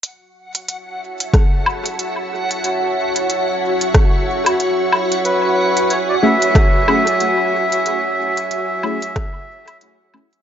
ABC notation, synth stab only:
X:1
M:4/4
L:1/8
Q:"Swing 16ths" 1/4=92
K:F#m
V:1 name="Synth stab"
z8 | z8 | z3 [A,CEG] z [A,CEG] z2 | z3 [A,CEG] z3 [A,CEG] |]